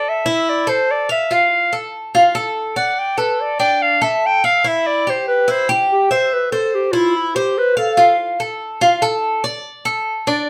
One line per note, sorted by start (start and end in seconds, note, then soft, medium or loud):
0.00 0.24 A4 medium
0.00 0.11 D5 medium
0.09 0.51 E5 medium
0.26 0.66 E4 medium
0.50 0.70 D5 medium
0.67 1.08 A4 medium
0.67 0.93 C5 medium
0.91 1.11 D5 medium
1.09 1.35 E5 medium
1.09 1.30 F5 medium
1.31 1.71 F4 medium
1.31 1.74 F5 medium
1.73 2.13 A4 medium
2.15 2.34 F4 medium
2.35 2.75 A4 medium
2.76 3.17 D5 medium
2.76 3.00 F#5 medium
2.99 3.20 G5 medium
3.18 3.58 A4 medium
3.18 3.42 B4 medium
3.41 3.60 D5 medium
3.60 4.00 D4 medium
3.60 3.84 G5 loud
3.82 4.02 F5 medium
4.02 4.42 A4 medium
4.02 4.28 E5 medium
4.26 4.46 G5 medium
4.44 4.64 E5 medium
4.44 4.69 F5 medium
4.64 5.05 E4 medium
4.64 4.88 E5 medium
4.87 5.11 D5 medium
5.07 5.47 G4 medium
5.07 5.27 C5 medium
5.28 5.53 B4 medium
5.48 5.68 E4 medium
5.48 5.70 C5 medium
5.69 5.87 E4 soft
5.69 6.09 G4 medium
5.92 6.11 G4 medium
6.11 6.35 C5 medium
6.11 6.51 E5 medium
6.33 6.51 B4 medium
6.52 6.76 A4 medium
6.52 6.92 C5 medium
6.75 6.94 G4 medium
6.92 7.34 E4 medium
6.92 7.18 F4 medium
7.16 7.37 E4 medium
7.36 7.60 G4 medium
7.36 7.76 C5 medium
7.58 7.77 B4 loud
7.77 8.16 A4 medium
7.77 7.97 F5 medium
7.97 8.38 F4 medium
8.40 8.80 A4 medium
8.81 9.02 F4 medium
9.02 9.43 A4 medium
9.44 9.84 D5 medium
9.85 10.26 A4 medium
10.27 10.50 D4 medium